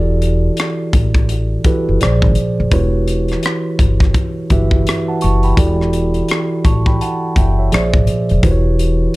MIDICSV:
0, 0, Header, 1, 5, 480
1, 0, Start_track
1, 0, Tempo, 714286
1, 1825, Time_signature, 4, 2, 24, 8
1, 6156, End_track
2, 0, Start_track
2, 0, Title_t, "Tine electric piano"
2, 0, Program_c, 0, 4
2, 0, Note_on_c, 0, 52, 70
2, 0, Note_on_c, 0, 64, 64
2, 0, Note_on_c, 0, 66, 62
2, 0, Note_on_c, 0, 67, 61
2, 0, Note_on_c, 0, 69, 61
2, 0, Note_on_c, 0, 74, 71
2, 27, Control_c, 0, 64, 127
2, 771, Note_off_c, 0, 52, 0
2, 772, Note_off_c, 0, 64, 0
2, 774, Note_off_c, 0, 66, 0
2, 775, Note_off_c, 0, 67, 0
2, 776, Note_off_c, 0, 69, 0
2, 800, Note_off_c, 0, 74, 0
2, 1105, Note_on_c, 0, 52, 70
2, 1109, Note_on_c, 0, 64, 60
2, 1112, Note_on_c, 0, 66, 61
2, 1113, Note_on_c, 0, 67, 66
2, 1116, Note_on_c, 0, 69, 64
2, 1118, Note_on_c, 0, 71, 80
2, 1345, Note_off_c, 0, 52, 0
2, 1345, Note_on_c, 0, 46, 72
2, 1347, Note_off_c, 0, 64, 0
2, 1348, Note_off_c, 0, 66, 0
2, 1349, Note_off_c, 0, 67, 0
2, 1350, Note_off_c, 0, 69, 0
2, 1350, Note_on_c, 0, 53, 66
2, 1352, Note_off_c, 0, 71, 0
2, 1353, Control_c, 0, 64, 0
2, 1353, Note_on_c, 0, 68, 63
2, 1355, Note_on_c, 0, 72, 68
2, 1359, Note_on_c, 0, 74, 78
2, 1474, Control_c, 0, 64, 127
2, 1777, Note_off_c, 0, 46, 0
2, 1780, Note_off_c, 0, 53, 0
2, 1781, Note_off_c, 0, 68, 0
2, 1782, Note_off_c, 0, 72, 0
2, 1784, Note_off_c, 0, 74, 0
2, 1826, Note_on_c, 0, 52, 68
2, 1829, Note_on_c, 0, 64, 66
2, 1831, Note_on_c, 0, 66, 58
2, 1832, Control_c, 0, 64, 0
2, 1835, Note_on_c, 0, 67, 63
2, 1836, Note_on_c, 0, 71, 65
2, 1839, Note_on_c, 0, 73, 75
2, 1946, Control_c, 0, 64, 127
2, 2690, Note_off_c, 0, 52, 0
2, 2692, Note_off_c, 0, 64, 0
2, 2693, Note_off_c, 0, 66, 0
2, 2695, Note_off_c, 0, 67, 0
2, 2696, Note_off_c, 0, 71, 0
2, 2697, Note_off_c, 0, 73, 0
2, 3025, Note_on_c, 0, 52, 68
2, 3028, Note_on_c, 0, 64, 65
2, 3031, Note_on_c, 0, 66, 65
2, 3034, Note_on_c, 0, 67, 70
2, 3036, Note_on_c, 0, 71, 63
2, 3041, Note_on_c, 0, 76, 79
2, 3416, Note_on_c, 0, 81, 63
2, 3420, Note_on_c, 0, 78, 52
2, 3503, Note_off_c, 0, 81, 0
2, 3506, Note_off_c, 0, 78, 0
2, 3509, Note_on_c, 0, 85, 63
2, 3512, Note_on_c, 0, 81, 53
2, 3644, Note_off_c, 0, 85, 0
2, 3646, Note_off_c, 0, 81, 0
2, 3656, Note_on_c, 0, 83, 58
2, 3659, Note_on_c, 0, 79, 49
2, 3674, Note_off_c, 0, 52, 0
2, 3675, Note_off_c, 0, 64, 0
2, 3677, Note_off_c, 0, 66, 0
2, 3678, Note_off_c, 0, 67, 0
2, 3679, Note_off_c, 0, 71, 0
2, 3681, Note_off_c, 0, 76, 0
2, 3740, Note_on_c, 0, 52, 68
2, 3744, Note_on_c, 0, 64, 61
2, 3745, Note_on_c, 0, 66, 64
2, 3749, Note_on_c, 0, 67, 60
2, 3751, Note_on_c, 0, 69, 64
2, 3753, Control_c, 0, 64, 0
2, 3755, Note_on_c, 0, 74, 75
2, 3866, Control_c, 0, 64, 127
2, 3881, Note_off_c, 0, 83, 0
2, 3883, Note_off_c, 0, 79, 0
2, 4468, Note_on_c, 0, 85, 55
2, 4470, Note_off_c, 0, 74, 0
2, 4472, Note_on_c, 0, 81, 46
2, 4604, Note_off_c, 0, 85, 0
2, 4606, Note_off_c, 0, 81, 0
2, 4607, Note_off_c, 0, 52, 0
2, 4610, Note_off_c, 0, 64, 0
2, 4610, Note_off_c, 0, 66, 0
2, 4612, Note_off_c, 0, 67, 0
2, 4613, Note_off_c, 0, 69, 0
2, 4616, Note_on_c, 0, 83, 60
2, 4620, Note_on_c, 0, 79, 50
2, 4703, Note_off_c, 0, 83, 0
2, 4706, Note_off_c, 0, 79, 0
2, 4713, Note_on_c, 0, 81, 61
2, 4718, Note_on_c, 0, 78, 50
2, 4937, Note_off_c, 0, 81, 0
2, 4940, Note_off_c, 0, 78, 0
2, 4955, Note_on_c, 0, 79, 55
2, 4960, Note_on_c, 0, 76, 51
2, 5088, Note_off_c, 0, 79, 0
2, 5090, Note_off_c, 0, 76, 0
2, 5100, Note_on_c, 0, 76, 52
2, 5104, Note_on_c, 0, 73, 45
2, 5185, Note_on_c, 0, 46, 71
2, 5189, Note_on_c, 0, 53, 68
2, 5191, Note_on_c, 0, 68, 67
2, 5194, Note_on_c, 0, 72, 67
2, 5195, Control_c, 0, 64, 0
2, 5198, Note_on_c, 0, 74, 85
2, 5323, Note_off_c, 0, 76, 0
2, 5324, Control_c, 0, 64, 127
2, 5325, Note_off_c, 0, 73, 0
2, 5618, Note_off_c, 0, 46, 0
2, 5619, Note_off_c, 0, 53, 0
2, 5621, Note_off_c, 0, 68, 0
2, 5622, Note_off_c, 0, 72, 0
2, 5624, Note_off_c, 0, 74, 0
2, 5661, Note_on_c, 0, 52, 71
2, 5665, Note_on_c, 0, 64, 69
2, 5667, Note_on_c, 0, 66, 64
2, 5669, Note_on_c, 0, 67, 64
2, 5672, Note_on_c, 0, 71, 62
2, 5674, Control_c, 0, 64, 0
2, 5675, Note_on_c, 0, 72, 62
2, 5719, Note_on_c, 0, 73, 83
2, 5723, Note_off_c, 0, 72, 0
2, 5769, Control_c, 0, 64, 127
2, 6156, Note_off_c, 0, 52, 0
2, 6156, Note_off_c, 0, 64, 0
2, 6156, Note_off_c, 0, 66, 0
2, 6156, Note_off_c, 0, 67, 0
2, 6156, Note_off_c, 0, 71, 0
2, 6156, Note_off_c, 0, 73, 0
2, 6156, End_track
3, 0, Start_track
3, 0, Title_t, "Upright bass"
3, 0, Program_c, 1, 32
3, 0, Note_on_c, 1, 28, 83
3, 323, Note_off_c, 1, 28, 0
3, 635, Note_on_c, 1, 33, 78
3, 1044, Note_off_c, 1, 33, 0
3, 1268, Note_on_c, 1, 30, 65
3, 1342, Note_off_c, 1, 30, 0
3, 1363, Note_on_c, 1, 34, 82
3, 1501, Note_off_c, 1, 34, 0
3, 1501, Note_on_c, 1, 32, 72
3, 1578, Note_off_c, 1, 32, 0
3, 1747, Note_on_c, 1, 29, 78
3, 1833, Note_off_c, 1, 29, 0
3, 1833, Note_on_c, 1, 28, 91
3, 2242, Note_off_c, 1, 28, 0
3, 2557, Note_on_c, 1, 31, 73
3, 2758, Note_off_c, 1, 31, 0
3, 3035, Note_on_c, 1, 31, 78
3, 3237, Note_off_c, 1, 31, 0
3, 3521, Note_on_c, 1, 30, 78
3, 3720, Note_off_c, 1, 30, 0
3, 3752, Note_on_c, 1, 28, 96
3, 4162, Note_off_c, 1, 28, 0
3, 4474, Note_on_c, 1, 33, 72
3, 4676, Note_off_c, 1, 33, 0
3, 4955, Note_on_c, 1, 30, 77
3, 5157, Note_off_c, 1, 30, 0
3, 5201, Note_on_c, 1, 34, 71
3, 5318, Note_off_c, 1, 34, 0
3, 5341, Note_on_c, 1, 32, 68
3, 5418, Note_off_c, 1, 32, 0
3, 5586, Note_on_c, 1, 29, 71
3, 5661, Note_off_c, 1, 29, 0
3, 5673, Note_on_c, 1, 28, 88
3, 6082, Note_off_c, 1, 28, 0
3, 6156, End_track
4, 0, Start_track
4, 0, Title_t, "Muted upright bass strokes"
4, 1113, Note_on_c, 9, 29, 40
4, 1180, Note_off_c, 9, 29, 0
4, 6156, End_track
5, 0, Start_track
5, 0, Title_t, "Drums"
5, 147, Note_on_c, 9, 42, 56
5, 214, Note_off_c, 9, 42, 0
5, 382, Note_on_c, 9, 42, 67
5, 402, Note_on_c, 9, 37, 87
5, 449, Note_off_c, 9, 42, 0
5, 469, Note_off_c, 9, 37, 0
5, 626, Note_on_c, 9, 36, 83
5, 627, Note_on_c, 9, 42, 72
5, 693, Note_off_c, 9, 36, 0
5, 694, Note_off_c, 9, 42, 0
5, 770, Note_on_c, 9, 36, 77
5, 772, Note_on_c, 9, 42, 31
5, 837, Note_off_c, 9, 36, 0
5, 839, Note_off_c, 9, 42, 0
5, 867, Note_on_c, 9, 42, 61
5, 934, Note_off_c, 9, 42, 0
5, 1104, Note_on_c, 9, 42, 53
5, 1106, Note_on_c, 9, 36, 75
5, 1171, Note_off_c, 9, 42, 0
5, 1173, Note_off_c, 9, 36, 0
5, 1349, Note_on_c, 9, 42, 74
5, 1364, Note_on_c, 9, 37, 94
5, 1417, Note_off_c, 9, 42, 0
5, 1431, Note_off_c, 9, 37, 0
5, 1493, Note_on_c, 9, 36, 88
5, 1560, Note_off_c, 9, 36, 0
5, 1580, Note_on_c, 9, 42, 55
5, 1647, Note_off_c, 9, 42, 0
5, 1825, Note_on_c, 9, 36, 91
5, 1826, Note_on_c, 9, 42, 74
5, 1892, Note_off_c, 9, 36, 0
5, 1893, Note_off_c, 9, 42, 0
5, 2067, Note_on_c, 9, 42, 58
5, 2134, Note_off_c, 9, 42, 0
5, 2206, Note_on_c, 9, 42, 30
5, 2229, Note_on_c, 9, 37, 30
5, 2274, Note_off_c, 9, 42, 0
5, 2296, Note_off_c, 9, 37, 0
5, 2304, Note_on_c, 9, 42, 71
5, 2323, Note_on_c, 9, 37, 89
5, 2371, Note_off_c, 9, 42, 0
5, 2391, Note_off_c, 9, 37, 0
5, 2547, Note_on_c, 9, 36, 79
5, 2550, Note_on_c, 9, 42, 71
5, 2614, Note_off_c, 9, 36, 0
5, 2617, Note_off_c, 9, 42, 0
5, 2690, Note_on_c, 9, 36, 82
5, 2695, Note_on_c, 9, 42, 31
5, 2708, Note_on_c, 9, 37, 27
5, 2757, Note_off_c, 9, 36, 0
5, 2762, Note_off_c, 9, 42, 0
5, 2775, Note_off_c, 9, 37, 0
5, 2785, Note_on_c, 9, 36, 82
5, 2788, Note_on_c, 9, 42, 64
5, 2852, Note_off_c, 9, 36, 0
5, 2855, Note_off_c, 9, 42, 0
5, 3024, Note_on_c, 9, 42, 56
5, 3026, Note_on_c, 9, 36, 71
5, 3091, Note_off_c, 9, 42, 0
5, 3093, Note_off_c, 9, 36, 0
5, 3166, Note_on_c, 9, 36, 79
5, 3233, Note_off_c, 9, 36, 0
5, 3271, Note_on_c, 9, 42, 75
5, 3285, Note_on_c, 9, 37, 92
5, 3338, Note_off_c, 9, 42, 0
5, 3352, Note_off_c, 9, 37, 0
5, 3501, Note_on_c, 9, 42, 51
5, 3569, Note_off_c, 9, 42, 0
5, 3649, Note_on_c, 9, 42, 31
5, 3716, Note_off_c, 9, 42, 0
5, 3745, Note_on_c, 9, 36, 95
5, 3747, Note_on_c, 9, 42, 79
5, 3812, Note_off_c, 9, 36, 0
5, 3814, Note_off_c, 9, 42, 0
5, 3907, Note_on_c, 9, 37, 26
5, 3974, Note_off_c, 9, 37, 0
5, 3986, Note_on_c, 9, 42, 59
5, 4053, Note_off_c, 9, 42, 0
5, 4127, Note_on_c, 9, 42, 31
5, 4194, Note_off_c, 9, 42, 0
5, 4224, Note_on_c, 9, 42, 71
5, 4243, Note_on_c, 9, 37, 93
5, 4291, Note_off_c, 9, 42, 0
5, 4310, Note_off_c, 9, 37, 0
5, 4466, Note_on_c, 9, 36, 85
5, 4469, Note_on_c, 9, 42, 72
5, 4533, Note_off_c, 9, 36, 0
5, 4536, Note_off_c, 9, 42, 0
5, 4610, Note_on_c, 9, 36, 81
5, 4677, Note_off_c, 9, 36, 0
5, 4712, Note_on_c, 9, 42, 62
5, 4779, Note_off_c, 9, 42, 0
5, 4946, Note_on_c, 9, 36, 70
5, 4946, Note_on_c, 9, 42, 55
5, 5013, Note_off_c, 9, 36, 0
5, 5014, Note_off_c, 9, 42, 0
5, 5189, Note_on_c, 9, 42, 72
5, 5204, Note_on_c, 9, 37, 98
5, 5257, Note_off_c, 9, 42, 0
5, 5271, Note_off_c, 9, 37, 0
5, 5333, Note_on_c, 9, 36, 98
5, 5400, Note_off_c, 9, 36, 0
5, 5423, Note_on_c, 9, 42, 56
5, 5491, Note_off_c, 9, 42, 0
5, 5573, Note_on_c, 9, 42, 28
5, 5640, Note_off_c, 9, 42, 0
5, 5665, Note_on_c, 9, 36, 92
5, 5667, Note_on_c, 9, 42, 78
5, 5732, Note_off_c, 9, 36, 0
5, 5734, Note_off_c, 9, 42, 0
5, 5909, Note_on_c, 9, 42, 62
5, 5976, Note_off_c, 9, 42, 0
5, 6156, End_track
0, 0, End_of_file